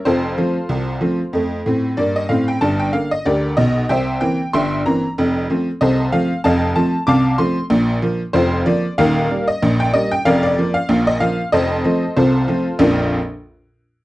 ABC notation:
X:1
M:2/4
L:1/16
Q:"Swing 16ths" 1/4=94
K:Bb
V:1 name="Honky-tonk piano"
[FAc]8- | [FAc]4 d e f g | a g f e [GBd]2 e2 | [c=eg]2 g2 [egc']2 b2 |
z4 [Ace]2 f2 | [efa]2 a2 [fad']2 c'2 | z4 [Fc]2 d2 | [Bf]3 e2 g e g |
[Bdf] d2 f2 e f2 | [Ace]4 [FAc]4 | [B,,,F,,F,B,DFB]2 z6 |]
V:2 name="Honky-tonk piano" clef=bass
[F,,,F,,]2 [F,A,C]2 [C,,C,]2 [F,A,C]2 | [F,,A,]2 [A,,C]2 [G,,B,]2 [A,,C]2 | [G,,,G,,]2 [D,B,]2 [D,,D,]2 [_C,,_C,]2 | [C,,C,]2 [=E,B,C]2 [G,,,G,,]2 [E,B,C]2 |
[F,,,F,,]2 [F,A,C]2 [C,,C,]2 [F,A,C]2 | [F,,,F,,]2 [F,A,C]2 [C,,C,]2 [F,A,C]2 | [B,,,B,,]2 [F,B,]2 [F,,,F,,]2 [F,B,]2 | [E,,,E,,]2 [G,B,]2 [B,,,B,,]2 [G,B,]2 |
[F,,,F,,]2 [F,B,]2 [B,,,B,,]2 [F,B,]2 | [F,,,F,,]2 [F,A,C]2 [C,,C,]2 [F,A,C]2 | z8 |]